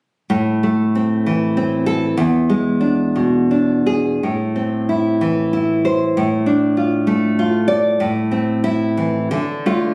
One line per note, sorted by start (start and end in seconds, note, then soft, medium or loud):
0.30 2.14 A2 soft
0.63 1.57 A3 soft
0.95 1.56 C4 soft
1.26 2.18 E3 soft
1.57 2.18 C4 soft
1.86 2.17 A4 medium
2.17 4.19 E2 medium
2.50 3.51 G#3 medium
2.81 3.50 D4 soft
3.16 4.23 B2 soft
3.51 4.23 D4 soft
3.86 4.23 G#4 medium
4.23 6.13 A2 medium
4.56 5.53 C4 soft
4.89 5.52 E4 soft
5.21 6.17 E3 soft
5.53 6.17 E4 soft
5.85 6.17 C5 medium
6.17 7.97 A2 medium
6.46 7.38 D4 soft
6.77 7.38 F4 soft
7.07 8.01 A3 soft
7.39 8.01 F4 medium
7.68 8.00 D5 medium
8.00 9.28 A2 medium
8.31 9.32 C4 soft
8.64 9.18 E4 medium
8.97 9.30 E3 medium
9.31 9.94 D3 medium
9.66 9.94 A3 soft
9.66 9.94 F4 medium